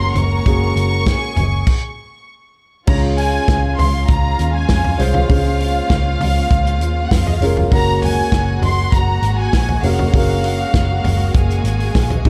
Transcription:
Already playing: F#1 G#3 A#3 C#4 F#4 G#4 A#4 A#5 C6
0.14 F#1 C#6, closed hi-hat, floor tom
0.46 F#1 A#3 C#4 F#4 G#4, kick, closed hi-hat
0.76 F#1, closed hi-hat
1.06 G#4 G#5, kick, snare, closed hi-hat
1.37 F#1, closed hi-hat, floor tom
1.67 kick, crash
2.87 C#2 C#3 G#3 C#4 F4 G#4 C#5 F5 A#5, kick, crash
3.16 G#5, hi-hat pedal, open hi-hat
3.48 C#2, kick, snare, hi-hat pedal, open hi-hat
3.79 C#2 C6, floor tom, hi-hat pedal, open hi-hat
4.08 C#2 A#5, kick, hi-hat pedal, open hi-hat
4.39 D#2, hi-hat pedal, open hi-hat
4.55 G#5
4.69 F2, kick, snare, hi-hat pedal, open hi-hat
4.84 floor tom
4.98 C2 G#3 C#4 F4 G#4 C5 F5, hi-hat pedal, open hi-hat
5.14 floor tom
5.29 C#2 C#3 G#3 A#3 C#4 F4 G#4 C5, kick, hi-hat pedal, open hi-hat
5.60 hi-hat pedal, open hi-hat
5.90 C#2, kick, snare, hi-hat pedal, open hi-hat
6.20 C#2, floor tom, hi-hat pedal, open hi-hat
6.36 open hi-hat
6.51 C#2, kick, hi-hat pedal, open hi-hat
6.66 hi-hat pedal
6.80 D#2, hi-hat pedal, open hi-hat
7.06 F#5
7.11 F2, kick, snare, hi-hat pedal, open hi-hat
7.16 F5
7.25 D#5, floor tom
7.34 F5
7.41 F1 G#3 C#4 F4 G#4 A#4, hi-hat pedal, open hi-hat
7.57 floor tom
7.70 F#1 G#3 A#3 C#4 F#4 G#4 A#4 F#5 A#5, kick, hi-hat pedal, open hi-hat
8.02 G#5, floor tom, hi-hat pedal, open hi-hat
8.32 F#1, kick, snare, hi-hat pedal, open hi-hat
8.62 F#1 C6, floor tom, hi-hat pedal, open hi-hat
8.92 F#1 A#5, kick, hi-hat pedal, open hi-hat
9.22 G#1, hi-hat pedal, open hi-hat
9.38 G#5
9.53 A#1, kick, snare, hi-hat pedal, open hi-hat
9.69 floor tom
9.82 F1 A#3 C#4 F#4 G#4 A#4 F5, hi-hat pedal, open hi-hat
9.99 floor tom
10.13 F#1 A#3 C#4 F#4 G#4 A#4, kick, hi-hat pedal, open hi-hat
10.44 hi-hat pedal, open hi-hat
10.74 F#1, kick, snare, hi-hat pedal, open hi-hat
11.04 F#1, floor tom, hi-hat pedal, open hi-hat
11.20 open hi-hat
11.34 F#1 G#4 G#5, kick, hi-hat pedal, open hi-hat
11.50 hi-hat pedal
11.64 G#1, hi-hat pedal, open hi-hat
11.80 open hi-hat
11.95 A#1, kick, snare, hi-hat pedal, open hi-hat
12.10 floor tom, hi-hat pedal
12.25 G#1 G#3 C4 D#4 D#5, kick, crash

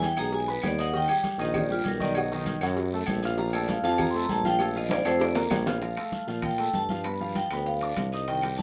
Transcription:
Already playing: E2 E3 E4 E5
0.02 G5, cowbell, high conga, low agogo, short guiro, maracas
0.17 B1 G#3 G#4 G#5 A#5, cowbell, high conga, low agogo, short guiro, claves, maracas
0.32 G#5, cowbell, high conga, long guiro, maracas
0.47 B3 B4 B5, high conga, maracas
0.62 D#2, cowbell, high conga, low timbale, low agogo, short guiro, claves, maracas
0.66 D5
0.78 D#4 D#5 F#5 D#6, high conga, low agogo, short guiro, maracas
0.93 D#3 D#4 D#5 G5, cowbell, high conga, long guiro, maracas
1.08 G3 G4 G5, high conga, low agogo, claves, maracas
1.23 cowbell, high conga, low agogo, short guiro, maracas
1.38 A#1 D#3 D#4 D#5, cowbell, high conga, low agogo, short guiro, maracas
1.54 D5, cowbell, high conga, low conga, low agogo, long guiro, claves, maracas
1.70 G3 F4 G4 G5, high conga, maracas
1.84 B1 A#4, cowbell, high conga, low agogo, short guiro, maracas
2.00 D#3 D#4 D5 D#5, high conga, short guiro, maracas
2.15 F#3 F#4 D#5 F#5, cowbell, high conga, low agogo, claves, maracas
2.32 D#3 D#4 D#5, high conga, maracas
2.46 cowbell, high conga, low agogo, short guiro, maracas
2.61 F#2 F#3 F#4 F#5, cowbell, low agogo, short guiro, claves, maracas
2.77 cowbell, high conga, long guiro, maracas
2.92 A3 A4 A5, high conga, maracas
3.06 A#1, cowbell, high conga, low agogo, short guiro, claves, maracas
3.22 F4 F5 F6, low agogo, short guiro, maracas
3.38 F3 F4 F5 A#5, cowbell, high conga, long guiro, maracas
3.53 A3 A4 D5 A5, high conga, low agogo, claves, maracas
3.68 F5, cowbell, high conga, low agogo, short guiro, maracas
3.83 F2 F3 F4 F5 A5, cowbell, high conga, low agogo, short guiro, maracas
3.98 A#5, cowbell, high conga, low conga, low agogo, long guiro, claves, maracas
4.11 A3 C6, high conga, maracas
4.15 A4 A5
4.22 A#5
4.29 A#1 A5, cowbell, high conga, low agogo, short guiro, maracas
4.44 F3 F4 F5 G5, high conga, short guiro, maracas
4.59 A3 A4 F5 A5, cowbell, low agogo, long guiro, claves, maracas
4.75 F3 F4 D#5 F5, high conga, maracas
4.89 D5, cowbell, high conga, high timbale, low agogo, short guiro, maracas
5.04 F2 A3 A4 C5 A5, cowbell, high bongo, high conga, high timbale, low agogo, short guiro, claves, maracas
5.20 D5, cowbell, high conga, high timbale, long guiro, maracas
5.35 A#3 A#4 A#5, low bongo, high conga, low timbale, maracas
5.50 A#1, cowbell, low bongo, high conga, low timbale, low agogo, short guiro, claves, maracas
5.66 F4 F5 F6, low bongo, low timbale, low agogo, short guiro, maracas
5.82 F3 F4 F5, high bongo, high conga, high timbale, long guiro, maracas
5.96 A3 A4 A5, high bongo, high conga, high timbale, claves, maracas
6.12 high bongo, high conga, short guiro, maracas
6.27 A#2 F3 F4 F5, high conga, short guiro, maracas
6.42 G5, high bongo, high conga, low conga, high timbale, long guiro, claves, maracas
6.58 A3 A4 A5, high bongo, high conga, high timbale, maracas
6.73 G2 A5, high bongo, low bongo, high conga, short guiro, maracas
6.89 F3 F4 F5, high bongo, high conga, short guiro, maracas
7.04 B3 B4 B5, high bongo, high conga, high timbale, long guiro, claves, maracas
7.20 F3 F4 F5, high bongo, high conga, maracas
7.35 G5, high bongo, high conga, high timbale, short guiro, maracas
7.50 D2 B3 B4 B5, high conga, high timbale, short guiro, claves, maracas
7.66 F5, high bongo, high conga, long guiro, maracas
7.81 D4 D5 D6, high bongo, high conga, high timbale, maracas
7.96 C2, high bongo, low bongo, high conga, high timbale, short guiro, claves, maracas
8.12 D#4 D#5 D#6, short guiro, maracas
8.28 D#3 D#4 D#5 G5, high bongo, high conga, high timbale, long guiro, maracas
8.42 G3 G4 G5, high bongo, high conga, high timbale, claves, maracas
8.58 A5, high bongo, high conga, short guiro, maracas

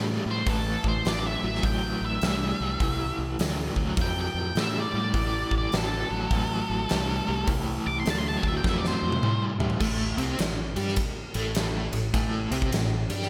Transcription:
Already playing: A2 G3
0.26 A2 G3
0.31 C5
0.47 A1 A2 E3 A4, kick, open hi-hat
0.84 A1, kick
0.88 C5
1.05 A1 A2 F#3 D5, snare, open hi-hat
1.26 E5
1.43 A1 A2 F#3
1.55 snare
1.63 A1 A2 F#3 G5, kick, open hi-hat
2.01 A1
2.05 E5
2.21 C2 A2 G3, snare, open hi-hat
2.60 C2 A2 G3
2.80 C2 A2 E3, kick, open hi-hat
3.18 C2
3.39 D2 A2 F#3, snare, open hi-hat
3.76 D2 A2 F#3, kick
3.97 F2 A2 F#3, kick, open hi-hat
4.01 G5
4.21 G5
4.34 F2
4.55 A2 G3, snare, open hi-hat
4.60 E5
4.80 D5
4.93 A2 G3
5.14 A1 A2 E3, kick, open hi-hat
5.51 A1, kick
5.58 D5
5.72 A1 A2 F#3, snare, open hi-hat
5.77 A4
6.10 A1 A2 F#3
6.31 A1 A2 F#3, kick, open hi-hat
6.70 A1
6.89 C2 A2 G3, snare, open hi-hat
7.27 C2 A2 G3
7.47 C2 A2 E3, kick, open hi-hat
7.86 C2 D6
8.00 C6
8.06 D2 A2 F#3, snare, open hi-hat
8.10 A5
8.18 C6
8.28 A5
8.37 G5
8.42 D2 A2 F#3, kick
8.48 E5
8.57 G5
8.63 F2 A2 F#3, kick, snare
8.69 E5
8.78 D5
8.85 C5, snare
9.02 F2
9.12 high tom
9.22 A2 G3, mid tom
9.59 A2 G3, floor tom
9.70 floor tom
9.80 A1 A2 A3, kick, crash
10.18 C2 C3 C4, ride
10.38 A1 A2, snare, ride
10.76 G2 G3 G4, ride
10.88 snare
10.96 kick, ride
11.34 A1 A2 A3, ride
11.55 snare, ride
11.93 A1 A2, ride
12.13 A1 A2 A3, kick, ride
12.51 C2 C3 C4, ride
12.62 kick
12.72 A1 A2, snare, ride
13.10 G2 G3 G4, ride
13.22 snare

